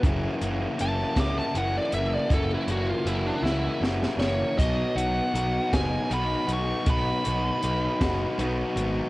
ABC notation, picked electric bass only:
X:1
M:6/8
L:1/8
Q:3/8=53
K:B
V:1 name="Picked electric bass" clef=bass
F,,, F,,, F,,, C,, F,,, F,,, | F,,, F,,, F,,, C,, F,,, F,,, | B,,, B,,, B,,, F,,, B,,, B,,, | B,,, B,,, B,,, F,,, B,,, G,,, |]